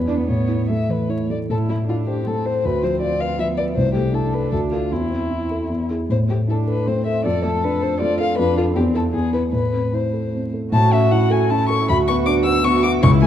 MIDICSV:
0, 0, Header, 1, 4, 480
1, 0, Start_track
1, 0, Key_signature, 0, "minor"
1, 0, Tempo, 402145
1, 334, Time_signature, 3, 2, 24, 8
1, 1776, Tempo, 378072
1, 5616, Tempo, 390625
1, 8976, Tempo, 376884
1, 11376, Tempo, 401070
1, 13296, Tempo, 382166
1, 16477, End_track
2, 0, Start_track
2, 0, Title_t, "Violin"
2, 0, Program_c, 0, 40
2, 0, Note_on_c, 0, 71, 45
2, 341, Note_off_c, 0, 71, 0
2, 352, Note_on_c, 0, 73, 40
2, 767, Note_off_c, 0, 73, 0
2, 833, Note_on_c, 0, 76, 52
2, 1072, Note_on_c, 0, 71, 44
2, 1090, Note_off_c, 0, 76, 0
2, 1309, Note_on_c, 0, 73, 41
2, 1327, Note_off_c, 0, 71, 0
2, 1545, Note_off_c, 0, 73, 0
2, 1559, Note_on_c, 0, 74, 41
2, 1650, Note_off_c, 0, 74, 0
2, 1793, Note_on_c, 0, 69, 54
2, 1888, Note_off_c, 0, 69, 0
2, 2035, Note_on_c, 0, 64, 48
2, 2130, Note_off_c, 0, 64, 0
2, 2288, Note_on_c, 0, 65, 55
2, 2381, Note_off_c, 0, 65, 0
2, 2519, Note_on_c, 0, 67, 53
2, 2766, Note_on_c, 0, 69, 59
2, 2785, Note_off_c, 0, 67, 0
2, 2998, Note_on_c, 0, 72, 67
2, 3017, Note_off_c, 0, 69, 0
2, 3246, Note_on_c, 0, 71, 76
2, 3265, Note_off_c, 0, 72, 0
2, 3485, Note_on_c, 0, 72, 63
2, 3504, Note_off_c, 0, 71, 0
2, 3707, Note_off_c, 0, 72, 0
2, 3714, Note_on_c, 0, 74, 65
2, 3949, Note_on_c, 0, 77, 71
2, 3968, Note_off_c, 0, 74, 0
2, 4186, Note_off_c, 0, 77, 0
2, 4201, Note_on_c, 0, 76, 69
2, 4292, Note_off_c, 0, 76, 0
2, 4422, Note_on_c, 0, 74, 72
2, 4517, Note_off_c, 0, 74, 0
2, 4655, Note_on_c, 0, 72, 74
2, 4889, Note_off_c, 0, 72, 0
2, 4898, Note_on_c, 0, 67, 59
2, 5141, Note_on_c, 0, 69, 52
2, 5160, Note_off_c, 0, 67, 0
2, 5389, Note_on_c, 0, 71, 58
2, 5408, Note_off_c, 0, 69, 0
2, 5609, Note_off_c, 0, 71, 0
2, 5617, Note_on_c, 0, 69, 54
2, 5712, Note_off_c, 0, 69, 0
2, 5861, Note_on_c, 0, 65, 54
2, 6113, Note_on_c, 0, 64, 55
2, 6132, Note_off_c, 0, 65, 0
2, 7312, Note_off_c, 0, 64, 0
2, 7571, Note_on_c, 0, 72, 65
2, 7663, Note_off_c, 0, 72, 0
2, 7813, Note_on_c, 0, 67, 47
2, 7905, Note_off_c, 0, 67, 0
2, 8053, Note_on_c, 0, 69, 46
2, 8143, Note_off_c, 0, 69, 0
2, 8284, Note_on_c, 0, 71, 55
2, 8513, Note_on_c, 0, 72, 65
2, 8531, Note_off_c, 0, 71, 0
2, 8745, Note_off_c, 0, 72, 0
2, 8756, Note_on_c, 0, 76, 58
2, 8980, Note_off_c, 0, 76, 0
2, 8986, Note_on_c, 0, 74, 69
2, 9220, Note_off_c, 0, 74, 0
2, 9238, Note_on_c, 0, 69, 59
2, 9474, Note_on_c, 0, 71, 66
2, 9493, Note_off_c, 0, 69, 0
2, 9711, Note_on_c, 0, 72, 67
2, 9730, Note_off_c, 0, 71, 0
2, 9936, Note_off_c, 0, 72, 0
2, 9944, Note_on_c, 0, 74, 80
2, 10178, Note_off_c, 0, 74, 0
2, 10199, Note_on_c, 0, 77, 80
2, 10418, Note_off_c, 0, 77, 0
2, 10425, Note_on_c, 0, 71, 83
2, 10653, Note_off_c, 0, 71, 0
2, 10669, Note_on_c, 0, 65, 63
2, 10761, Note_off_c, 0, 65, 0
2, 10899, Note_on_c, 0, 67, 69
2, 10994, Note_off_c, 0, 67, 0
2, 11148, Note_on_c, 0, 69, 64
2, 11242, Note_off_c, 0, 69, 0
2, 11386, Note_on_c, 0, 68, 68
2, 11610, Note_off_c, 0, 68, 0
2, 11621, Note_on_c, 0, 71, 60
2, 11714, Note_off_c, 0, 71, 0
2, 11846, Note_on_c, 0, 71, 63
2, 12347, Note_on_c, 0, 72, 48
2, 12365, Note_off_c, 0, 71, 0
2, 13065, Note_off_c, 0, 72, 0
2, 13290, Note_on_c, 0, 81, 98
2, 13537, Note_on_c, 0, 76, 84
2, 13556, Note_off_c, 0, 81, 0
2, 13767, Note_on_c, 0, 78, 82
2, 13785, Note_off_c, 0, 76, 0
2, 14020, Note_on_c, 0, 80, 80
2, 14038, Note_off_c, 0, 78, 0
2, 14254, Note_on_c, 0, 81, 90
2, 14273, Note_off_c, 0, 80, 0
2, 14491, Note_off_c, 0, 81, 0
2, 14498, Note_on_c, 0, 85, 90
2, 14736, Note_off_c, 0, 85, 0
2, 14744, Note_on_c, 0, 83, 102
2, 14841, Note_off_c, 0, 83, 0
2, 14981, Note_on_c, 0, 85, 91
2, 15078, Note_off_c, 0, 85, 0
2, 15209, Note_on_c, 0, 86, 104
2, 15307, Note_off_c, 0, 86, 0
2, 15448, Note_on_c, 0, 88, 105
2, 15689, Note_on_c, 0, 85, 107
2, 15708, Note_off_c, 0, 88, 0
2, 15925, Note_off_c, 0, 85, 0
2, 15933, Note_on_c, 0, 86, 106
2, 16030, Note_off_c, 0, 86, 0
2, 16175, Note_on_c, 0, 85, 117
2, 16271, Note_off_c, 0, 85, 0
2, 16418, Note_on_c, 0, 80, 102
2, 16477, Note_off_c, 0, 80, 0
2, 16477, End_track
3, 0, Start_track
3, 0, Title_t, "Cello"
3, 0, Program_c, 1, 42
3, 101, Note_on_c, 1, 62, 63
3, 215, Note_off_c, 1, 62, 0
3, 223, Note_on_c, 1, 59, 52
3, 321, Note_off_c, 1, 59, 0
3, 328, Note_on_c, 1, 59, 57
3, 825, Note_on_c, 1, 57, 47
3, 842, Note_off_c, 1, 59, 0
3, 1544, Note_off_c, 1, 57, 0
3, 1789, Note_on_c, 1, 64, 45
3, 2239, Note_off_c, 1, 64, 0
3, 2267, Note_on_c, 1, 62, 47
3, 2742, Note_off_c, 1, 62, 0
3, 2753, Note_on_c, 1, 60, 46
3, 4174, Note_on_c, 1, 59, 51
3, 4193, Note_off_c, 1, 60, 0
3, 4650, Note_on_c, 1, 57, 44
3, 4669, Note_off_c, 1, 59, 0
3, 5125, Note_off_c, 1, 57, 0
3, 5133, Note_on_c, 1, 62, 58
3, 6104, Note_on_c, 1, 60, 39
3, 6122, Note_off_c, 1, 62, 0
3, 7307, Note_off_c, 1, 60, 0
3, 8039, Note_on_c, 1, 62, 49
3, 8501, Note_on_c, 1, 60, 41
3, 8519, Note_off_c, 1, 62, 0
3, 8980, Note_on_c, 1, 69, 52
3, 8999, Note_off_c, 1, 60, 0
3, 9935, Note_on_c, 1, 65, 52
3, 9954, Note_off_c, 1, 69, 0
3, 10414, Note_off_c, 1, 65, 0
3, 10424, Note_on_c, 1, 62, 58
3, 10886, Note_off_c, 1, 62, 0
3, 10898, Note_on_c, 1, 60, 60
3, 11370, Note_off_c, 1, 60, 0
3, 11381, Note_on_c, 1, 59, 48
3, 11841, Note_off_c, 1, 59, 0
3, 11855, Note_on_c, 1, 57, 37
3, 13038, Note_off_c, 1, 57, 0
3, 13291, Note_on_c, 1, 66, 83
3, 14263, Note_on_c, 1, 64, 62
3, 14281, Note_off_c, 1, 66, 0
3, 14735, Note_on_c, 1, 66, 79
3, 14754, Note_off_c, 1, 64, 0
3, 15695, Note_off_c, 1, 66, 0
3, 15708, Note_on_c, 1, 66, 82
3, 16176, Note_off_c, 1, 66, 0
3, 16188, Note_on_c, 1, 64, 92
3, 16477, Note_off_c, 1, 64, 0
3, 16477, End_track
4, 0, Start_track
4, 0, Title_t, "Grand piano"
4, 0, Program_c, 2, 0
4, 0, Note_on_c, 2, 40, 47
4, 55, Control_c, 2, 64, 127
4, 93, Note_on_c, 2, 64, 32
4, 93, Note_on_c, 2, 74, 36
4, 309, Note_off_c, 2, 64, 0
4, 309, Note_off_c, 2, 74, 0
4, 315, Note_off_c, 2, 40, 0
4, 344, Note_on_c, 2, 45, 41
4, 357, Control_c, 2, 64, 0
4, 539, Control_c, 2, 64, 127
4, 576, Note_on_c, 2, 64, 33
4, 830, Note_on_c, 2, 57, 36
4, 961, Note_off_c, 2, 64, 0
4, 1062, Note_on_c, 2, 52, 29
4, 1209, Note_off_c, 2, 57, 0
4, 1301, Note_on_c, 2, 64, 31
4, 1445, Note_off_c, 2, 52, 0
4, 1551, Note_on_c, 2, 57, 31
4, 1685, Note_off_c, 2, 64, 0
4, 1738, Note_off_c, 2, 45, 0
4, 1783, Note_off_c, 2, 57, 0
4, 1786, Note_on_c, 2, 45, 41
4, 1802, Control_c, 2, 64, 0
4, 2010, Control_c, 2, 64, 127
4, 2030, Note_on_c, 2, 57, 32
4, 2278, Note_on_c, 2, 64, 38
4, 2416, Note_off_c, 2, 57, 0
4, 2526, Note_on_c, 2, 72, 38
4, 2661, Note_off_c, 2, 64, 0
4, 2768, Note_on_c, 2, 57, 32
4, 2904, Note_off_c, 2, 72, 0
4, 3009, Note_on_c, 2, 72, 33
4, 3146, Note_off_c, 2, 57, 0
4, 3196, Note_off_c, 2, 45, 0
4, 3243, Note_off_c, 2, 72, 0
4, 3253, Note_on_c, 2, 38, 43
4, 3258, Control_c, 2, 64, 0
4, 3440, Control_c, 2, 64, 127
4, 3482, Note_on_c, 2, 53, 35
4, 3723, Note_on_c, 2, 65, 44
4, 3857, Note_off_c, 2, 53, 0
4, 3963, Note_on_c, 2, 71, 38
4, 4097, Note_off_c, 2, 65, 0
4, 4191, Note_on_c, 2, 53, 38
4, 4335, Note_off_c, 2, 71, 0
4, 4433, Note_on_c, 2, 71, 36
4, 4567, Note_off_c, 2, 53, 0
4, 4625, Note_off_c, 2, 38, 0
4, 4664, Note_off_c, 2, 71, 0
4, 4671, Note_on_c, 2, 36, 50
4, 4680, Control_c, 2, 64, 0
4, 4860, Control_c, 2, 64, 127
4, 4911, Note_on_c, 2, 57, 35
4, 5132, Note_on_c, 2, 64, 40
4, 5284, Note_off_c, 2, 57, 0
4, 5394, Note_on_c, 2, 69, 37
4, 5519, Note_off_c, 2, 64, 0
4, 5594, Note_off_c, 2, 36, 0
4, 5627, Note_off_c, 2, 69, 0
4, 5629, Note_on_c, 2, 38, 44
4, 5643, Control_c, 2, 64, 0
4, 5836, Control_c, 2, 64, 127
4, 5872, Note_on_c, 2, 65, 28
4, 5878, Note_on_c, 2, 69, 33
4, 6082, Note_off_c, 2, 65, 0
4, 6085, Note_off_c, 2, 69, 0
4, 6089, Note_off_c, 2, 38, 0
4, 6116, Note_on_c, 2, 40, 34
4, 6122, Control_c, 2, 64, 0
4, 6346, Note_on_c, 2, 60, 30
4, 6347, Control_c, 2, 64, 127
4, 6593, Note_on_c, 2, 64, 35
4, 6732, Note_off_c, 2, 60, 0
4, 6840, Note_on_c, 2, 69, 33
4, 6973, Note_off_c, 2, 64, 0
4, 7045, Note_off_c, 2, 40, 0
4, 7069, Note_on_c, 2, 40, 33
4, 7071, Note_off_c, 2, 69, 0
4, 7087, Control_c, 2, 64, 0
4, 7289, Control_c, 2, 64, 127
4, 7322, Note_on_c, 2, 64, 26
4, 7326, Note_on_c, 2, 68, 29
4, 7532, Note_off_c, 2, 64, 0
4, 7534, Note_off_c, 2, 40, 0
4, 7534, Note_off_c, 2, 68, 0
4, 7561, Note_on_c, 2, 45, 41
4, 7568, Control_c, 2, 64, 0
4, 7758, Control_c, 2, 64, 127
4, 7796, Note_on_c, 2, 57, 28
4, 8032, Note_on_c, 2, 64, 37
4, 8176, Note_off_c, 2, 57, 0
4, 8267, Note_on_c, 2, 69, 34
4, 8411, Note_off_c, 2, 64, 0
4, 8514, Note_on_c, 2, 57, 32
4, 8645, Note_off_c, 2, 69, 0
4, 8749, Note_on_c, 2, 69, 35
4, 8887, Note_off_c, 2, 57, 0
4, 8942, Note_off_c, 2, 45, 0
4, 8981, Note_off_c, 2, 69, 0
4, 8983, Note_on_c, 2, 41, 45
4, 9003, Control_c, 2, 64, 0
4, 9175, Control_c, 2, 64, 127
4, 9225, Note_on_c, 2, 57, 34
4, 9474, Note_on_c, 2, 62, 46
4, 9607, Note_off_c, 2, 57, 0
4, 9709, Note_on_c, 2, 69, 47
4, 9852, Note_off_c, 2, 62, 0
4, 9954, Note_on_c, 2, 57, 38
4, 10090, Note_off_c, 2, 69, 0
4, 10196, Note_on_c, 2, 69, 46
4, 10329, Note_off_c, 2, 57, 0
4, 10378, Note_off_c, 2, 41, 0
4, 10425, Note_off_c, 2, 69, 0
4, 10432, Note_on_c, 2, 41, 53
4, 10443, Control_c, 2, 64, 0
4, 10636, Control_c, 2, 64, 127
4, 10667, Note_on_c, 2, 62, 37
4, 10670, Note_on_c, 2, 69, 45
4, 10875, Note_off_c, 2, 62, 0
4, 10877, Note_off_c, 2, 69, 0
4, 10885, Note_off_c, 2, 41, 0
4, 10895, Note_on_c, 2, 40, 56
4, 10916, Control_c, 2, 64, 0
4, 11106, Control_c, 2, 64, 127
4, 11123, Note_on_c, 2, 64, 36
4, 11132, Note_on_c, 2, 69, 41
4, 11347, Note_off_c, 2, 64, 0
4, 11352, Note_off_c, 2, 69, 0
4, 11362, Note_off_c, 2, 40, 0
4, 11380, Note_on_c, 2, 40, 46
4, 11399, Control_c, 2, 64, 0
4, 11592, Control_c, 2, 64, 127
4, 11609, Note_on_c, 2, 64, 29
4, 11617, Note_on_c, 2, 71, 33
4, 11824, Note_off_c, 2, 64, 0
4, 11828, Note_off_c, 2, 71, 0
4, 11835, Note_off_c, 2, 40, 0
4, 11847, Note_on_c, 2, 45, 37
4, 11872, Control_c, 2, 64, 0
4, 12063, Control_c, 2, 64, 127
4, 12090, Note_on_c, 2, 60, 27
4, 12333, Note_on_c, 2, 64, 31
4, 12481, Note_off_c, 2, 60, 0
4, 12573, Note_on_c, 2, 69, 28
4, 12721, Note_off_c, 2, 64, 0
4, 12817, Note_on_c, 2, 60, 25
4, 12960, Note_off_c, 2, 69, 0
4, 13054, Note_on_c, 2, 69, 26
4, 13202, Note_off_c, 2, 60, 0
4, 13252, Note_off_c, 2, 45, 0
4, 13280, Note_on_c, 2, 45, 66
4, 13294, Note_off_c, 2, 69, 0
4, 13319, Control_c, 2, 64, 0
4, 13524, Control_c, 2, 64, 127
4, 13533, Note_on_c, 2, 61, 45
4, 13772, Note_on_c, 2, 64, 53
4, 13921, Note_off_c, 2, 61, 0
4, 14003, Note_on_c, 2, 69, 53
4, 14159, Note_off_c, 2, 64, 0
4, 14264, Note_on_c, 2, 61, 51
4, 14396, Note_off_c, 2, 69, 0
4, 14502, Note_on_c, 2, 69, 59
4, 14651, Note_off_c, 2, 61, 0
4, 14694, Note_off_c, 2, 45, 0
4, 14746, Note_off_c, 2, 69, 0
4, 14755, Note_on_c, 2, 38, 64
4, 14771, Control_c, 2, 64, 0
4, 14957, Control_c, 2, 64, 127
4, 14998, Note_on_c, 2, 59, 54
4, 15223, Note_on_c, 2, 62, 59
4, 15373, Note_off_c, 2, 59, 0
4, 15466, Note_on_c, 2, 66, 63
4, 15603, Note_off_c, 2, 62, 0
4, 15691, Note_on_c, 2, 59, 65
4, 15846, Note_off_c, 2, 66, 0
4, 15944, Note_on_c, 2, 66, 63
4, 16081, Note_off_c, 2, 59, 0
4, 16142, Note_off_c, 2, 38, 0
4, 16183, Note_off_c, 2, 66, 0
4, 16185, Note_on_c, 2, 37, 83
4, 16207, Control_c, 2, 64, 0
4, 16376, Control_c, 2, 64, 127
4, 16421, Note_on_c, 2, 57, 64
4, 16477, Note_off_c, 2, 37, 0
4, 16477, Note_off_c, 2, 57, 0
4, 16477, End_track
0, 0, End_of_file